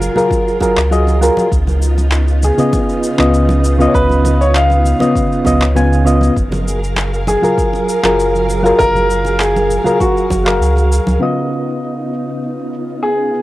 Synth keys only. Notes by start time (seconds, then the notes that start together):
Already playing: F#3 F4 G#4 A#4
0.16 F#3 F4 G#4 A#4
0.60 F#3 F4 G#4 A#4
0.91 F#3 F4 G#4 D#5
1.21 F#3 F4 G#4 A#4
2.58 C#3 B3 F4 D#5
3.18 C#3 B3 F4 D#5
3.78 C#3 B3 F4 D#5
5.00 C#3 B3 F4 D#5
5.44 C#3 B3 F4 D#5
5.75 C#3 B3 F4 G#5
6.05 C#3 B3 F4 D#5
7.42 F#3 F4 G#4 A#4
8.03 F#3 F4 G#4 A#4
8.63 F#3 F4 G#4 A#4
9.84 F#3 F4 G#4 A#4
10.44 F#3 G#4 A#4 F5
11.19 C#3 B3 F4 D#5